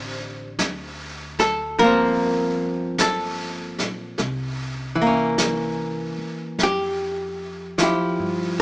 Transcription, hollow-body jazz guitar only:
Already playing: D3 G3 C4 F4 C5
1.40 A4
1.79 F3 A#3 A#4
1.84 C4
3.01 A4
4.96 E3
5.02 A#3
5.07 C#4
6.63 G4
7.78 F3 E4
7.83 G4

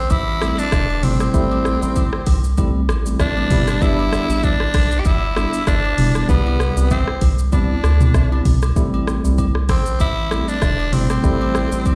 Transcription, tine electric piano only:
0.41 G3 A3 C4 E4
1.03 G3 A3 C4 E4
1.34 G3 A3 C4 E4
1.82 G3 A3 C4 E4
2.58 G3 A3 C4 E4
3.05 G3 A3 C4 E4
3.36 G3 A3 C4 E4
3.50 G3 B3 D4 E4
3.81 G3 B3 D4 E4
4.29 G3 B3 D4 E4
5.36 G3 B3 D4 E4
5.98 G3 B3 D4 E4
6.29 C3 G3 B3 E4
6.77 G3 B3 C4 E4
7.52 G3 B3 C4 E4
8.00 G3 B3 C4 E4
8.31 G3 B3 C4 E4
8.76 G3 A3 C4 E4
9.24 G3 A3 C4 E4
10.31 G3 A3 C4 E4
10.93 G3 A3 C4 E4
11.23 G3 A3 C4 E4
11.71 G3 A3 C4 E4

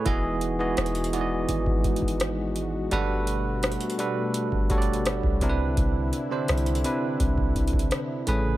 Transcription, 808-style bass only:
0.06 E1
0.78 E1
1.49 G#1
2.92 G1
4.52 G1
5.24 C2
5.77 C2
6.49 C2
7.20 C2
8.28 A1

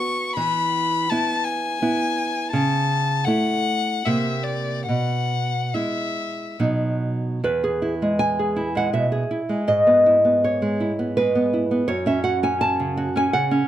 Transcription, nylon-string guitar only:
Already playing: B3 F#4
0.37 E3
1.11 B3 E4
1.82 B3 E4
2.53 C#3
3.27 A3 E4
4.06 C3 A#3 G4
4.89 B2
5.74 G#3 E4
6.60 B2 F#3 D#4
7.44 E2 B4
7.64 G#4
7.82 E4
8.02 G#3
8.19 G#5
8.39 G#4
8.56 E4
8.75 G#3 F#5
8.93 B2 E5
9.12 G#4
9.31 E4
9.49 G#3
9.68 G#2 D#5
9.87 B3
10.06 E4
10.25 B3
10.44 C#5
10.62 G#3
10.80 E4
10.99 B3
11.17 G#3 B4
11.35 B3
11.53 E4
11.71 B3
11.88 F#2 C#5
12.06 C#4 E5
12.24 F#4 F#5
12.43 C#4 G#5
12.61 A5
12.80 C#3
12.97 F#4
13.16 C#4 G#5
13.33 C#3 F#5
13.51 C#4

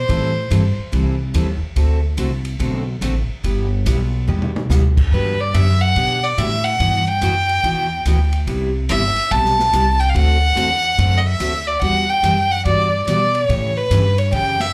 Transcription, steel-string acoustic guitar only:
0.08 E3 G3 C4 E4 A4
0.50 E3 G3 C4 E4 A4
0.92 E3 G3 C4 E4 A4
1.34 E3 G3 C4 E4 A4
1.76 D3 A3 C4 F#4 A4
2.17 D3 A3 C4 F#4 A4
2.59 D3 A3 C4 F#4 A4
3.01 D3 A3 C4 F#4 A4
3.43 G3 B3 E4 G4
3.86 G3 B3 E4 G4
4.27 G3 B3 E4 G4
4.70 G3 B3 E4 G4
5.13 D3 F#3 B3 D4 G4
5.54 D3 F#3 B3 D4 G4
5.96 D3 F#3 B3 D4 G4
6.38 D3 F#3 B3 D4 G4
6.80 B2 E3 B3 E4 F#4
7.21 B2 E3 B3 E4 F#4
7.64 B2 E3 B3 E4 F#4
8.06 B2 E3 B3 E4 F#4
8.47 C3 G3 B3 E4 G4
8.89 C3 G3 B3 E4 G4
9.30 C3 G3 B3 E4 G4
9.73 C3 G3 B3 E4 G4
10.14 D3 A3 C4 F#4 A4
10.55 D3 A3 C4 F#4 A4
10.98 D3 A3 C4 F#4 A4
11.40 D3 A3 C4 F#4 A4
11.81 E3 G3 B3 F#4
12.23 E3 G3 B3 F#4
12.65 E3 G3 B3 F#4
13.07 E3 G3 B3 F#4
13.49 C#3 E3 A3 C#4 G4
13.91 C#3 E3 A3 C#4 G4
14.33 C#3 E3 A3 C#4 G4

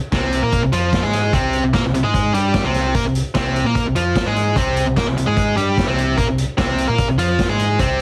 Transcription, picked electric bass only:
0.12 C2
0.43 A#2
0.62 C2
0.73 F2
1.04 G#2
1.33 C2
1.63 C2
1.74 A#2
1.84 C2
1.93 C2
2.04 G#2
2.34 G2
2.64 C2
2.94 A#2
3.04 C2
3.35 C2
3.64 A#2
3.85 C2
3.95 F2
4.25 G#2
4.56 C2
4.86 C2
4.96 A#2
5.07 C2
5.17 C2
5.27 G#2
5.57 G2
5.88 C2
6.17 A#2
6.28 C2
6.58 C2
6.89 A#2
7.09 C2
7.18 F2
7.48 G#2
7.79 C2

